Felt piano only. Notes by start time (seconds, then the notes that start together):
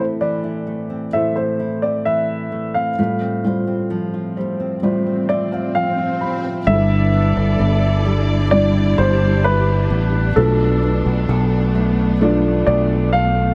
Already playing: A2 E3 A3 C4 E4 C5
1.14 A3 E4 C5
2.98 A2 G3 F4 A4
3.45 G3 F4 C5
4.37 C5
4.82 G3 F4 C5 D5
5.29 E5
5.52 F5
5.75 G5
6.21 B5
6.67 G2 D3 G3 D4 E4 A4
6.75 B4
8.52 G3 D4 E4 D5
10.36 B2 A3 D4 F4 B4
12.21 A3 D4 F4 D5